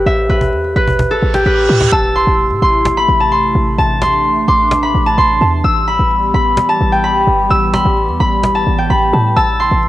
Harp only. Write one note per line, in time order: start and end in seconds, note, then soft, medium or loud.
0.00 1.34 G4 medium
0.00 1.10 A4 medium
0.00 0.29 B4 medium
0.06 1.79 E5 medium
0.29 0.76 B4 medium
0.76 1.45 B4 medium
1.11 3.30 A4 medium
1.34 3.70 G4 medium
1.46 2.22 B4 medium
1.92 3.20 A5 medium
2.16 2.62 C6 medium
2.62 3.03 C6 medium
2.97 3.38 B5 medium
3.20 3.78 A5 medium
3.32 4.01 C6 medium
3.78 5.06 A5 medium
4.02 4.48 C6 medium
4.48 4.89 C6 medium
4.83 5.24 B5 medium
5.06 6.51 A5 medium
5.18 5.94 C6 medium
5.64 6.78 E6 medium
5.88 6.34 B5 medium
6.34 7.03 B5 medium
6.69 8.14 A5 medium
6.92 8.47 G5 medium
7.04 7.73 B5 medium
7.50 8.64 E6 medium
7.74 8.20 B5 medium
8.20 8.90 B5 medium
8.55 9.36 A5 medium
8.78 9.89 G5 medium
8.90 9.66 B5 medium
9.37 9.89 A5 medium
9.60 9.89 C6 medium